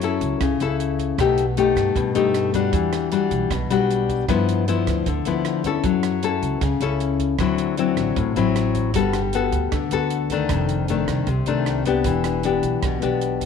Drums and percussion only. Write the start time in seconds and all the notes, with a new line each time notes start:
0.02 closed hi-hat
0.21 kick, closed hi-hat
0.41 kick, cross-stick, closed hi-hat
0.60 closed hi-hat
0.80 closed hi-hat
0.99 kick, closed hi-hat
1.18 kick, cross-stick, closed hi-hat
1.38 closed hi-hat
1.57 closed hi-hat
1.76 kick, cross-stick, closed hi-hat
1.96 kick, closed hi-hat
2.15 closed hi-hat
2.34 cross-stick, closed hi-hat
2.53 kick, closed hi-hat
2.73 kick, closed hi-hat
2.93 cross-stick, closed hi-hat
3.12 closed hi-hat
3.31 kick, closed hi-hat
3.51 kick, cross-stick, closed hi-hat
3.71 closed hi-hat
3.91 closed hi-hat
4.09 kick, closed hi-hat
4.29 kick, cross-stick, closed hi-hat
4.49 closed hi-hat
4.68 closed hi-hat
4.87 kick, cross-stick, closed hi-hat
5.06 kick, closed hi-hat
5.25 closed hi-hat
5.45 cross-stick, closed hi-hat
5.64 kick, closed hi-hat
5.84 kick, closed hi-hat
6.03 cross-stick, closed hi-hat
6.23 closed hi-hat
6.42 kick, closed hi-hat
6.61 kick, cross-stick, closed hi-hat
6.81 closed hi-hat
7.00 closed hi-hat
7.20 kick, closed hi-hat
7.39 kick, cross-stick, closed hi-hat
7.58 closed hi-hat
7.77 closed hi-hat
7.97 kick, cross-stick, closed hi-hat
8.16 kick, closed hi-hat
8.36 closed hi-hat
8.56 cross-stick, closed hi-hat
8.75 kick, closed hi-hat
8.94 kick, closed hi-hat
9.13 cross-stick, closed hi-hat
9.33 closed hi-hat
9.52 kick, closed hi-hat
9.72 kick, cross-stick, closed hi-hat
9.91 closed hi-hat
10.10 closed hi-hat
10.30 kick, closed hi-hat
10.49 kick, cross-stick, closed hi-hat
10.69 closed hi-hat
10.88 closed hi-hat
11.08 kick, cross-stick, closed hi-hat
11.27 kick, closed hi-hat
11.46 closed hi-hat
11.66 cross-stick, closed hi-hat
11.85 kick, closed hi-hat
12.04 kick, closed hi-hat
12.24 cross-stick, closed hi-hat
12.43 closed hi-hat
12.63 kick, closed hi-hat
12.83 kick, cross-stick, closed hi-hat
13.02 closed hi-hat
13.21 closed hi-hat
13.41 kick, closed hi-hat